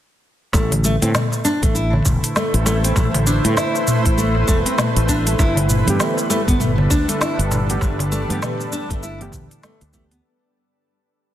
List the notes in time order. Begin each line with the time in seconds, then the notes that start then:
0.53 A1 A3, kick, darbuka tek, shaker
0.60 E4
0.71 open hi-hat, darbuka dum
0.84 A3, darbuka ka, shaker
1.02 A2 C4, open hi-hat, shaker
1.07 B4
1.14 A3 C5, snare, mid tom, darbuka ka, shaker
1.32 darbuka tek, shaker
1.45 D4, darbuka ka, shaker
1.63 A1 A3, kick, open hi-hat, shaker
1.75 E4, shaker
1.93 darbuka dum
2.06 E1, kick, mid tom, darbuka ka, shaker
2.24 open hi-hat, shaker
2.36 A3, snare, shaker
2.54 A1, open hi-hat
2.66 A3, darbuka tek, shaker
2.84 C4, open hi-hat, shaker
2.96 A1 A3, kick, mid tom, darbuka tek, shaker
3.14 open hi-hat, darbuka tek, darbuka dum
3.27 D4, shaker
3.45 A2 A3, open hi-hat, shaker
3.57 E4, snare, darbuka ka, shaker
3.75 darbuka tek, shaker
3.87 mid tom, darbuka ka, shaker
4.05 A1, kick, open hi-hat, shaker
4.18 A3, shaker
4.35 darbuka ka
4.48 E1 A3, kick, darbuka ka, shaker
4.66 C4, open hi-hat, shaker
4.78 A3, snare, mid tom, shaker
4.96 A1, open hi-hat
5.09 D4, kick, shaker
5.27 A3, open hi-hat, shaker
5.39 G1 G3 E4, kick, darbuka tek, shaker
5.44 D4
5.56 A4, open hi-hat, darbuka dum
5.69 mid tom, darbuka ka, shaker
5.85 G2 E3 A3 B3, open hi-hat, shaker
5.89 G4
5.99 A3, snare, darbuka ka, shaker
6.17 darbuka tek, shaker
6.30 A3, darbuka ka, shaker
6.48 G1 B3, kick, open hi-hat, shaker
6.60 A3, mid tom, shaker
6.78 darbuka dum
6.90 D2 D4, kick, darbuka ka, shaker
7.09 A3, open hi-hat, shaker
7.21 E4, snare, shaker
7.39 G1, open hi-hat
7.52 mid tom, darbuka tek, shaker
7.68 E3 A3 B3 G4, open hi-hat, shaker
7.81 G1 A3, kick, darbuka tek, shaker
7.99 open hi-hat, darbuka tek, darbuka dum
8.12 A3, darbuka ka, shaker
8.28 G2 E3 A3 B3 G4, open hi-hat, shaker
8.42 A3, snare, mid tom, darbuka ka, shaker
8.60 darbuka tek, shaker
8.72 D4, darbuka ka, shaker
8.90 G1 A3, kick, open hi-hat, shaker
9.03 E4, shaker
9.20 E3 A3 B3 G4, open hi-hat, darbuka ka, darbuka dum
9.32 D2 E3 A3 B3, kick, mid tom, darbuka ka, shaker
9.51 open hi-hat, shaker
9.63 A3, snare, shaker
9.81 D2, open hi-hat, shaker
9.92 E3 A3 B3 G4, kick, shaker
10.11 B3, open hi-hat, shaker